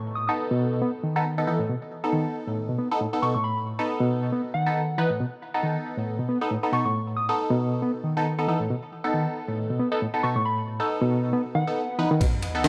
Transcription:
Already playing: reed electric piano A2, downlifter
0.15 synth bell D#6
0.27 synth stab B3 D#4 A4, synth bell D#6
0.51 reed electric piano B2
0.82 reed electric piano B3
1.04 reed electric piano D#3
1.16 synth stab B3 D#4 A4
1.38 synth stab B3 D#4 A4
1.47 reed electric piano E3, synth stab B3 D#4 A4
1.60 reed electric piano A2
1.69 reed electric piano B2
2.04 synth stab B3 D#4 A4
2.13 reed electric piano D#3
2.47 reed electric piano A2
2.69 reed electric piano B2
2.79 reed electric piano B3
2.91 synth stab B3 D#4 A4
3.01 reed electric piano A2
3.13 synth stab B3 D#4 A4
3.22 reed electric piano B2, synth stab B3 D#4 A4, synth bell C#6
3.34 reed electric piano A2, synth bell C#6
3.44 synth bell B5
3.79 synth stab B3 D#4 A4
4.01 reed electric piano B2
4.32 reed electric piano B3
4.54 reed electric piano D#3, synth bell F#5
4.66 synth stab B3 D#4 A4
4.98 reed electric piano E3, synth stab B3 D#4 B4
5.10 reed electric piano A2
5.20 reed electric piano B2
5.54 synth stab B3 D#4 A4
5.63 reed electric piano D#3
5.97 reed electric piano A2
6.19 reed electric piano B2
6.29 reed electric piano B3
6.41 synth stab B3 D#4 A4
6.51 reed electric piano A2
6.63 synth stab B3 D#4 A4
6.73 reed electric piano B2, synth stab B3 D#4 A4, synth bell C#6
6.85 reed electric piano A2, synth bell C#6
7.17 synth bell D#6
7.29 synth stab B3 D#4 A4, synth bell D#6
7.50 reed electric piano B2
7.82 reed electric piano B3
8.04 reed electric piano D#3
8.17 synth stab B3 D#4 A4
8.39 synth stab B3 D#4 A4
8.48 reed electric piano E3, synth stab B3 D#4 A4
8.60 reed electric piano A2
8.70 reed electric piano B2
9.04 synth stab B3 D#4 A4
9.13 reed electric piano D#3
9.48 reed electric piano A2
9.70 reed electric piano B2
9.79 reed electric piano B3
9.92 synth stab B3 D#4 A4
10.01 reed electric piano A2
10.14 synth stab B3 D#4 A4
10.23 reed electric piano B2, synth stab B3 D#4 A4, synth bell C#6
10.36 reed electric piano A2, synth bell C#6
10.45 synth bell B5
10.80 synth stab B3 D#4 A4
11.02 reed electric piano B2
11.33 reed electric piano B3, swell
11.55 reed electric piano D#3, synth bell F#5
11.68 synth stab B3 D#4 A4
11.99 reed electric piano E3, synth stab B3 D#4 B4
12.11 reed electric piano D#3
12.21 detuned saw bass B1, reed electric piano B2, kick, ride, sub drop
12.43 ride
12.55 synth stab B3 D#4 A4
12.64 reed electric piano D#3, snare, ride

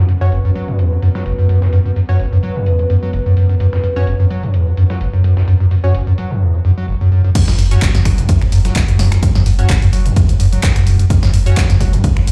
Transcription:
Already playing: analog synth pad C#4 F#4 B4
0.08 acid bass F#2, closed hi-hat
0.21 acid bass F#2, synth stab C#4 F#4 C#5
0.32 acid bass F#1, closed hi-hat
0.45 acid bass F#2
0.55 acid bass F#3, closed hi-hat
0.68 acid bass F#2, closed hi-hat
0.79 acid bass E2, closed hi-hat
0.92 acid bass F#2
1.02 acid bass F#2, closed hi-hat
1.15 acid bass F#3, snare
1.26 acid bass F#1, closed hi-hat
1.39 acid bass F#2
1.49 acid bass F#2, closed hi-hat
1.62 acid bass F#2, snare
1.73 acid bass F#2, closed hi-hat
1.85 acid bass F#2
1.96 acid bass F#2, open hi-hat
2.09 acid bass F#2, synth stab C#4 F#4 C#5
2.19 acid bass F#1, closed hi-hat
2.32 acid bass F#2
2.43 acid bass F#3, closed hi-hat
2.56 acid bass F#2
2.66 acid bass E2, closed hi-hat
2.79 acid bass F#2, closed hi-hat
2.90 acid bass F#2, closed hi-hat
3.03 acid bass F#3
3.13 acid bass F#1, closed hi-hat
3.26 acid bass F#2
3.37 acid bass F#2, closed hi-hat
3.50 acid bass F#2
3.60 acid bass F#2, closed hi-hat
3.73 acid bass F#2, snare
3.84 acid bass F#2, closed hi-hat
3.96 acid bass F#2, synth stab C#4 F#4 C#5
4.07 acid bass F#1, closed hi-hat
4.20 acid bass F#2
4.31 acid bass F#3, closed hi-hat
4.43 acid bass F#2, closed hi-hat
4.54 acid bass E2, closed hi-hat
4.67 acid bass F#2
4.77 acid bass F#2, closed hi-hat
4.90 acid bass F#3, snare
5.01 acid bass F#1, closed hi-hat
5.13 acid bass F#2
5.24 acid bass F#2, closed hi-hat
5.37 acid bass F#2, snare
5.48 acid bass F#2, closed hi-hat
5.60 acid bass F#2
5.71 acid bass F#2, open hi-hat
5.84 acid bass F#2, synth stab C#4 F#4 C#5
5.95 acid bass F#1, closed hi-hat
6.07 acid bass F#2
6.18 acid bass F#3, closed hi-hat
6.31 acid bass F#2
6.41 acid bass E2
6.54 acid bass F#2
6.65 acid bass F#2
6.78 acid bass F#3
6.88 acid bass F#1
7.01 acid bass F#2
7.12 acid bass F#2
7.25 acid bass F#2
7.35 acid bass F#2, kick, closed hi-hat, crash, ride
7.48 acid bass F#2, snare
7.59 sub bass F#1, acid bass F#2, closed hi-hat, open hi-hat
7.71 acid bass F#2, synth stab C#4 F#4 C#5, closed hi-hat
7.82 acid bass F#1, kick, snare, clap, closed hi-hat, ride
7.95 acid bass F#2, snare, closed hi-hat
8.05 sub bass F#1, acid bass F#3, finger snap, kick, closed hi-hat, open hi-hat
8.18 acid bass F#2, closed hi-hat
8.29 acid bass E2, kick, closed hi-hat, ride
8.41 acid bass F#2, finger snap
8.52 sub bass F#1, acid bass F#2, closed hi-hat, open hi-hat
8.65 acid bass F#3, snare, closed hi-hat
8.76 acid bass F#1, kick, snare, clap, closed hi-hat, ride
8.88 acid bass F#2, closed hi-hat
8.99 sub bass E1, acid bass F#2, snare, closed hi-hat, open hi-hat
9.12 acid bass F#2, finger snap, snare, closed hi-hat
9.23 acid bass F#2, kick, closed hi-hat, ride
9.35 acid bass F#2, snare
9.46 sub bass F#1, acid bass F#2, open hi-hat
9.59 acid bass F#2, synth stab C#4 F#4 C#5, closed hi-hat
9.69 acid bass F#1, kick, snare, clap, closed hi-hat, ride
9.82 acid bass F#2, open hi-hat
9.93 sub bass F#1, acid bass F#3, closed hi-hat, open hi-hat
10.05 acid bass F#2, closed hi-hat
10.16 acid bass E2, kick, closed hi-hat, ride
10.29 acid bass F#2, closed hi-hat
10.40 sub bass F#1, acid bass F#2, closed hi-hat, open hi-hat
10.52 acid bass F#3, closed hi-hat
10.63 acid bass F#1, finger snap, kick, snare, clap, closed hi-hat, ride
10.76 acid bass F#2, finger snap, closed hi-hat
10.87 sub bass E1, acid bass F#2, closed hi-hat, open hi-hat
10.99 acid bass F#2, closed hi-hat
11.10 acid bass F#2, kick, closed hi-hat, ride
11.23 acid bass F#2, snare
11.33 sub bass F#1, acid bass F#2, closed hi-hat, open hi-hat
11.46 acid bass F#2, synth stab C#4 F#4 C#5, closed hi-hat
11.57 acid bass F#1, kick, snare, clap, closed hi-hat, ride
11.69 acid bass F#2, snare, closed hi-hat
11.80 sub bass F#1, acid bass F#3, kick, closed hi-hat, open hi-hat
11.93 acid bass F#2, closed hi-hat
12.04 acid bass E2, kick, closed hi-hat, ride
12.16 acid bass F#2, finger snap
12.27 sub bass F#1, acid bass F#2, closed hi-hat, open hi-hat

